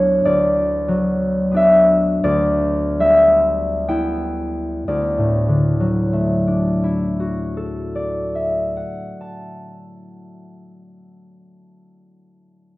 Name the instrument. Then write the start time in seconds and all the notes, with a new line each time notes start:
harp
Already playing: D2 F#3 B3 D4 C#5 D5
0.25 D2 D5
0.88 F#3
1.51 B3 D4
1.57 E5
2.24 D2 D5
3.00 G3 E5
3.88 B3 E4 G5
4.88 D2 D5
5.18 A2
5.48 D3
5.80 F#3
6.13 A3
6.47 D4
6.83 E4
7.20 F#4
7.57 A4
7.95 D5
8.35 E5
8.77 F#5
9.21 A5